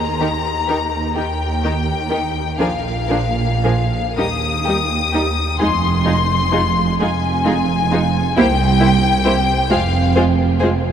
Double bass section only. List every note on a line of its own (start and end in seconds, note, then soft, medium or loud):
0.00 0.99 D#2 soft
1.17 2.42 D#2 soft
2.59 3.98 A#1 medium
4.17 5.42 D#2 soft
5.58 6.83 F1 medium
6.98 8.20 F1 medium
8.36 9.54 C2 medium
9.71 10.91 F1 medium